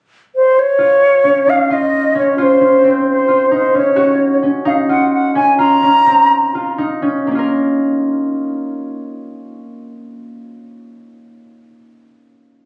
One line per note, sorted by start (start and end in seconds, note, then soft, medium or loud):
0.36 0.61 C5 medium
0.59 1.51 C#5 medium
0.79 1.70 F4 medium
1.24 2.15 C#4 medium
1.47 3.51 D#4 medium
1.47 1.74 F5 medium
1.70 2.38 F4 medium
1.70 2.17 D#5 medium
2.15 2.60 C#4 medium
2.15 2.44 C#5 medium
2.38 3.28 F4 medium
2.42 3.09 C5 medium
2.61 2.90 C#4 medium
2.84 3.80 C4 medium
3.09 3.51 C5 medium
3.28 4.02 F4 medium
3.51 4.65 D#4 medium
3.51 3.75 C5 medium
3.74 4.42 C#4 medium
3.74 4.37 C#5 medium
3.96 4.95 F#4 medium
4.43 5.35 C#4 medium
4.65 6.78 D#4 medium
4.65 4.73 F5 medium
4.89 5.58 F4 medium
4.89 5.11 F#5 medium
5.14 5.34 F#5 medium
5.35 5.82 C#4 medium
5.35 5.57 G#5 medium
5.58 6.54 F4 medium
5.58 6.74 A#5 medium
5.83 6.12 C#4 medium
6.06 7.08 C4 medium
6.55 7.35 F4 medium
6.78 9.49 D#4 medium
7.02 7.31 C#4 medium
7.27 11.24 A#3 medium
7.31 11.28 C#4 medium
7.31 11.32 F4 soft
7.39 11.35 A#4 medium